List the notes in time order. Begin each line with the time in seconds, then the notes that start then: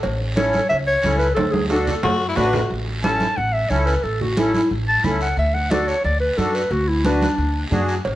0.03 A1, cowbell, long guiro
0.21 high conga
0.36 C#4 E4 A4 C#5, cowbell, high conga, short guiro
0.53 high conga, short guiro
0.69 C#2 E5, cowbell, high conga, long guiro
0.87 C#5
1.03 C#2 C#4 E4 A4, cowbell, high conga, short guiro
1.18 B4, short guiro
1.35 D2 A4, cowbell, high conga, high timbale, long guiro
1.51 G#4, high conga, high timbale
1.68 D4 F#4 A4, cowbell, high timbale, short guiro
1.87 low conga, short guiro
2.03 F#2 F#4, cowbell, low conga, low timbale
2.28 E4
2.36 A1 D4 F#4 B4, cowbell, low conga, low timbale, short guiro
2.53 low conga, low timbale, short guiro
2.70 A1, long guiro
2.88 high conga
3.03 C#4 E4 A4 A5, high conga, short guiro
3.20 high conga, short guiro
3.36 A1 F#5, high conga, long guiro
3.53 E5
3.70 C#2 C#4 E4 A4 C#5, high conga, short guiro
3.86 B4, short guiro
4.03 A1 A4, long guiro
4.21 F#4, high conga, low conga
4.37 C#4 E4 A4, high conga, short guiro
4.54 E4, high conga, short guiro
4.71 A1, high conga, long guiro
4.88 A5
5.04 C#2 C#4 E4 A4 B5, high conga, low conga, short guiro
5.21 F#5, short guiro
5.37 D2 E5, long guiro
5.54 F#5, high conga
5.71 D4 F#4 A4 D5, high conga, short guiro
5.88 C#5, short guiro
6.04 D2 D5, high conga, long guiro
6.20 B4
6.37 F#2 D4 F#4 A4, high conga, short guiro
6.55 B4, short guiro
6.71 D2 F#4, long guiro
6.88 E4, high conga
7.04 D4 F#4 B4, high conga, short guiro
7.22 high conga, short guiro
7.38 D2, high conga, long guiro
7.71 F#2 D4 F#4 G#4, high conga, low conga, short guiro
7.88 short guiro
8.05 A1, cowbell, long guiro